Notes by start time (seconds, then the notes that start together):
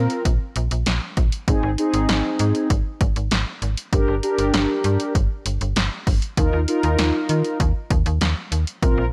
Already playing: C4 F4 A#4
0.10 closed hi-hat
0.25 A#1, kick, closed hi-hat
0.56 A#1, closed hi-hat
0.71 A#1, closed hi-hat
0.86 A#1, snare, closed hi-hat
1.17 A#1, kick, closed hi-hat
1.32 closed hi-hat
1.48 G#1 C4 D#4 G#4, kick, closed hi-hat
1.63 G#1
1.78 C4 D#4 G#4, closed hi-hat
1.94 G#1, closed hi-hat
2.09 G#1, snare, closed hi-hat
2.39 G#2, closed hi-hat
2.55 closed hi-hat
2.70 G#1, kick, closed hi-hat
3.01 G#1, kick, closed hi-hat
3.16 G#1, closed hi-hat
3.31 G#1, snare, closed hi-hat
3.62 G#1, closed hi-hat
3.77 closed hi-hat
3.93 G1 D4 G4 A#4, kick, closed hi-hat
4.08 G1
4.23 D4 G4 A#4, closed hi-hat
4.38 G1, closed hi-hat
4.54 G1, snare, closed hi-hat
4.84 G2, closed hi-hat
5.00 closed hi-hat
5.15 G1, kick, closed hi-hat
5.46 G1, closed hi-hat
5.61 G1, closed hi-hat
5.76 G1, snare, closed hi-hat
6.07 G1, kick, open hi-hat
6.22 closed hi-hat
6.37 D#2 D#4 F4 A#4, kick, closed hi-hat
6.53 D#2
6.68 D#4 F4 A#4, closed hi-hat
6.83 D#2, closed hi-hat
6.99 D#2, snare, closed hi-hat
7.29 D#3, closed hi-hat
7.45 closed hi-hat
7.60 D#2, kick, closed hi-hat
7.91 D#2, kick, closed hi-hat
8.06 D#2, closed hi-hat
8.21 D#2, snare, closed hi-hat
8.52 D#2, closed hi-hat
8.67 closed hi-hat
8.82 A#1 C4 F4 A#4, kick, closed hi-hat
8.98 A#1